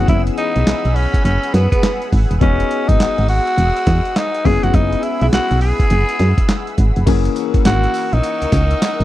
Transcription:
Already playing: grand piano E3 B3 C#4 G#4, analog synth pad G#4 F#5 B5 E6
0.08 fm bass F#1, tenor saxophone E4, kick, closed hi-hat
0.27 closed hi-hat
0.37 tenor saxophone D#4, closed hi-hat
0.56 fm bass B1, closed hi-hat
0.67 snare, clap, closed hi-hat
0.85 fm bass B1, closed hi-hat
0.95 tenor saxophone C#4, open hi-hat
1.14 kick, closed hi-hat
1.25 fm bass F#1, tenor saxophone C#4, closed hi-hat
1.44 closed hi-hat
1.53 fm bass F#2, tenor saxophone B3, snare, closed hi-hat
1.71 tenor saxophone B3, kick, closed hi-hat
1.83 snare, clap, closed hi-hat
2.02 closed hi-hat
2.12 fm bass G#1, kick, open hi-hat
2.31 fm bass D#1, closed hi-hat
2.40 fm bass E1, grand piano B3 D#4 F#4 G#4, tenor saxophone C#4, analog synth pad D#6 E6, kick, closed hi-hat
2.60 closed hi-hat
2.71 closed hi-hat
2.88 fm bass G#1, tenor saxophone D#4, kick, closed hi-hat
3.00 fm bass G#1, snare, clap, closed hi-hat
3.18 fm bass G#1, closed hi-hat
3.28 tenor saxophone F#4, open hi-hat
3.47 closed hi-hat
3.58 fm bass E1, closed hi-hat
3.76 closed hi-hat
3.87 fm bass E2, kick, snare, closed hi-hat
4.05 closed hi-hat
4.16 tenor saxophone D#4, snare, clap, closed hi-hat
4.35 closed hi-hat
4.44 fm bass F#1, grand piano B3 C#4 E4 G#4, analog synth pad G#4 B5 E6, tenor saxophone G#4, kick, open hi-hat
4.63 fm bass F1, tenor saxophone F#4, closed hi-hat
4.74 fm bass F#1, tenor saxophone D#4, kick, closed hi-hat
4.93 closed hi-hat
5.03 tenor saxophone E4, closed hi-hat
5.21 fm bass B1, tenor saxophone E4, closed hi-hat
5.33 tenor saxophone F#4, snare, clap, closed hi-hat
5.51 fm bass B1, closed hi-hat
5.61 tenor saxophone G#4, open hi-hat
5.80 kick, closed hi-hat
5.90 fm bass F#1, closed hi-hat
6.09 closed hi-hat
6.19 fm bass F#2, snare, closed hi-hat
6.38 kick, closed hi-hat
6.49 snare, clap, closed hi-hat
6.67 closed hi-hat
6.78 fm bass G#1, kick, closed hi-hat
6.96 fm bass F1, closed hi-hat
7.06 fm bass F#1, grand piano E3 A#3 C#4 G#4, analog synth pad A#4 F#5 C#6 E6, kick, closed hi-hat, crash, tambourine
7.25 closed hi-hat
7.36 closed hi-hat, tambourine
7.54 fm bass G#1, kick, closed hi-hat
7.65 fm bass G#1, tenor saxophone F#4, snare, clap, closed hi-hat, tambourine
7.84 closed hi-hat
7.94 open hi-hat, tambourine
8.13 fm bass A#1, tenor saxophone D#4, closed hi-hat
8.23 closed hi-hat, tambourine
8.42 fm bass C#2, closed hi-hat
8.52 fm bass C#2, kick, snare, closed hi-hat, tambourine
8.71 closed hi-hat
8.82 snare, clap, closed hi-hat, tambourine
9.00 fm bass G#1, closed hi-hat

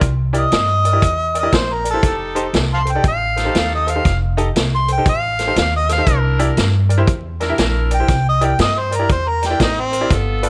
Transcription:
0.01 upright bass C2, kick, closed hi-hat
0.33 upright piano E4 G4 A#4 D5, closed hi-hat
0.39 harmonica D#5
0.52 upright bass G2, snare, closed hi-hat
0.85 upright piano A#4 D5, closed hi-hat
0.93 upright piano E4 G4 A#4 D5
1.02 upright bass E2, kick, closed hi-hat
1.35 upright piano A#4 D5, closed hi-hat
1.39 upright piano E4 G4 A#4, harmonica D#5
1.43 upright piano D5
1.53 upright bass A#1, harmonica C5, kick, snare, closed hi-hat
1.73 harmonica A#4
1.84 upright piano A#4 D5, closed hi-hat
1.91 upright piano E4 G4 A#4 C5, harmonica A4
2.03 upright bass F1, saxophone section D#4 G4 A4, kick, snare, closed hi-hat
2.35 upright piano D#4 G4 A4 C5, closed hi-hat
2.53 upright bass C2, snare, closed hi-hat
2.74 harmonica F5 A5 C6
2.85 upright piano A4 C5, closed hi-hat
2.91 upright piano D#4 A4, harmonica G5
2.96 upright piano G4 D5
3.04 upright bass A1, kick, closed hi-hat
3.08 harmonica F5
3.36 saxophone section D#4 G4 A4, upright piano A4 C5, snare, closed hi-hat
3.45 upright piano D#4 G4 A4 C5
3.55 upright bass D#2, harmonica F5, snare, closed hi-hat
3.75 harmonica D#5
3.87 upright piano A4 C5, closed hi-hat
3.91 upright piano G4, harmonica F5
3.95 upright piano D#4 A4 C5
4.05 upright bass F1, kick, snare, closed hi-hat
4.37 upright piano D#4 G4 A4 D#5, closed hi-hat
4.56 upright bass C2, snare, closed hi-hat
4.75 harmonica C6
4.88 upright piano A4 C5, closed hi-hat
4.93 harmonica G5
4.98 upright piano D#4 G4 A4 C5
5.06 upright bass A1, harmonica F5, kick, closed hi-hat
5.39 upright piano A4 C5, snare, closed hi-hat
5.47 upright piano D#4 G4 A4 C5
5.56 upright bass D#2, harmonica F5, snare, closed hi-hat
5.76 harmonica D#5
5.89 upright piano A4 C5, harmonica F5, snare, closed hi-hat
5.98 upright piano D#4 G4 A4 C5
6.06 upright bass C2, saxophone section D4 E4 A#4, kick, closed hi-hat
6.39 upright piano E4 G4 A#4 D5, closed hi-hat
6.57 upright bass G2, snare, closed hi-hat
6.89 upright piano A#4 D5, closed hi-hat
6.97 upright piano E4 G4 A#4 C5
7.07 upright bass E2, kick, closed hi-hat
7.40 saxophone section D4 E4 A#4, upright piano A#4 D5, snare, closed hi-hat
7.49 upright piano E4 G4 A#4 E5
7.58 upright bass A#1, snare, closed hi-hat
7.91 upright piano A#4 D5, closed hi-hat
7.95 harmonica G5
8.00 upright piano E4 G4 A#4 C5
8.08 upright bass C2, kick, snare, closed hi-hat
8.29 harmonica D#5
8.41 upright piano E4 G4 A#4 D5, closed hi-hat
8.45 harmonica G5
8.59 upright bass G2, harmonica D#5, snare, closed hi-hat
8.79 harmonica C5
8.91 upright piano A#4 D5, closed hi-hat
8.96 upright piano E4 A#4 D5, harmonica A#4
9.00 upright piano G4
9.09 upright bass E2, harmonica C5, kick, closed hi-hat
9.28 harmonica A#4
9.42 harmonica G4, upright piano A#4 D5, snare, closed hi-hat
9.50 upright piano E4 G4 A#4 D5
9.60 upright bass A1, harmonica D#4, kick, snare, closed hi-hat
9.80 harmonica C4
9.92 upright piano A#4 C5, closed hi-hat
10.01 upright piano E4 G4 A#4 D5
10.10 upright bass G1, saxophone section B3 F4 A4, kick, snare, closed hi-hat
10.43 upright piano F4 A4 B4 D5, closed hi-hat

